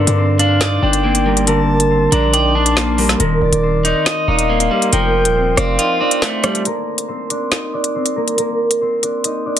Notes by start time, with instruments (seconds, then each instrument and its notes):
Already playing: clean electric guitar D3, harp A#3 C4 D4 A#4 C5 D5, soft synth lead D5
0.07 808-style bass G2, closed hi-hat
0.17 harp C4 C5
0.39 clean electric guitar D4, harp D4 D5, soft synth lead F5, closed hi-hat
0.61 harp D#4 D#5, clean electric guitar D5, snare, closed hi-hat
0.82 808-style bass G1, clean electric guitar D4, harp D4 D5, soft synth lead G5
0.93 closed hi-hat
1.04 clean electric guitar A#3, harp C4 C5
1.15 closed hi-hat
1.25 clean electric guitar G3, harp A#3 A#4
1.37 closed hi-hat
1.47 clean electric guitar D3, harp A#3 A#4, soft synth lead A5, closed hi-hat
1.80 closed hi-hat
1.91 harp C4 C5
2.12 808-style bass A#1, clean electric guitar D4, harp D4 D5, soft synth lead A#5, closed hi-hat
2.33 harp D#4 D#5, clean electric guitar D5, soft synth lead G5, closed hi-hat
2.55 clean electric guitar D4, harp D4 D5, soft synth lead A5
2.66 closed hi-hat
2.77 clean electric guitar A#3, harp C4 C5, snare
2.98 clean electric guitar G3, harp A#3 A#4, open hi-hat
3.09 snare, closed hi-hat
3.20 808-style bass D#1, clean electric guitar D#3, harp A#3 A#4, closed hi-hat
3.42 808-style bass D#1, soft synth lead D5
3.52 808-style bass D#1, closed hi-hat
3.63 harp C4 C5
3.85 harp D4 D5, clean electric guitar D#4, soft synth lead D#5, closed hi-hat
4.06 harp D#4 D#5, clean electric guitar D#5, snare, closed hi-hat
4.28 808-style bass D#1, harp D4 D5, clean electric guitar D#4, soft synth lead F5
4.39 closed hi-hat
4.49 clean electric guitar A#3, harp C4 C5
4.60 closed hi-hat
4.70 clean electric guitar G3, harp A#3 A#4
4.82 closed hi-hat
4.92 808-style bass F1, clean electric guitar F3, harp A#3 A#4, soft synth lead G5, closed hi-hat
5.25 808-style bass D#1, closed hi-hat
5.36 harp C4 C5
5.57 808-style bass F1, clean electric guitar C4, harp D4 D5, soft synth lead F5, cross-stick, closed hi-hat
5.79 harp D#4 D#5, clean electric guitar F4, closed hi-hat
6.00 clean electric guitar C4, harp D4 D5
6.11 closed hi-hat
6.22 clean electric guitar A3, harp C4 C5, snare
6.43 clean electric guitar G3, harp A3 A4, cross-stick, closed hi-hat
6.55 closed hi-hat
6.65 harp A#3 A#4, closed hi-hat
6.98 closed hi-hat
7.08 harp C4 C5
7.30 harp D4 D5, closed hi-hat
7.52 snare, closed hi-hat
7.73 harp D4 D5
7.84 closed hi-hat
7.95 harp C4 C5
8.06 closed hi-hat
8.16 harp A#3 A#4
8.28 closed hi-hat
8.38 harp A#3 A#4, closed hi-hat
8.71 closed hi-hat
8.81 harp C4 C5
9.03 harp D4 D5, closed hi-hat
9.24 harp D#4 D#5, closed hi-hat
9.46 harp D4 D5